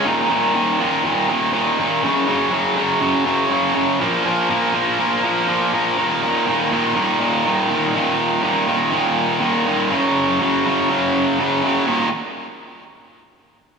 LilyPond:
\new Staff \with { instrumentName = "Overdriven electric guitar" } { \clef bass \time 4/4 \key ees \minor \tempo 4 = 122 <ees, bes, ees>8 <ees, bes, ees>8 <ees, bes, ees>8 <ees, bes, ees>8 <ees, bes, ees>8 <ees, bes, ees>8 <ees, bes, ees>8 <ees, bes, ees>8 | <ges, des ges>8 <ges, des ges>8 <ges, des ges>8 <ges, des ges>8 <ges, des ges>8 <ges, des ges>8 <ges, des ges>8 <ges, des ges>8 | <bes, f bes>8 <bes, f bes>8 <bes, f bes>8 <bes, f bes>8 <bes, f bes>8 <bes, f bes>8 <bes, f bes>8 <bes, f bes>8 | <ees, bes, ees>8 <ees, bes, ees>8 <ees, bes, ees>8 <ees, bes, ees>8 <ees, bes, ees>8 <ees, bes, ees>8 <ees, bes, ees>8 <ees, bes, ees>8 |
<ees, bes, ees>4 <ees, bes, ees>8 <ees, bes, ees>8 <ees, bes, ees>4 <ees, bes, ees>8 <ees, bes, ees>8 | <ges, des ges>4 <ges, des ges>8 <ges, des ges>8 <ges, des ges>4 <ges, des ges>8 <ges, des ges>8 | <ees, bes, ees>8 r2. r8 | }